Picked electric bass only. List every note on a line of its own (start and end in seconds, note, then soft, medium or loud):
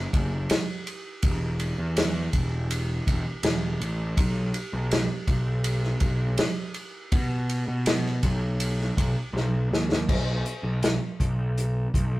0.14 0.46 F#1 medium
1.23 1.73 E1 medium
1.78 2.28 E2 medium
2.34 3.00 E1 medium
3.07 3.24 E1 loud
3.43 3.76 E1 loud
3.80 4.13 A1 medium
4.18 4.51 B1 loud
4.73 5.06 B1 medium
5.28 5.94 B1 medium
6.01 6.34 B1 medium
7.12 7.62 B2 medium
7.68 8.17 B2 medium
8.24 8.89 B1 medium
8.98 9.14 B1 loud
9.33 9.67 B1 loud
9.71 10.04 D#2 medium
10.09 10.42 B1 medium
10.63 10.96 B1 medium
11.21 11.86 B1 medium
11.94 12.20 B1 medium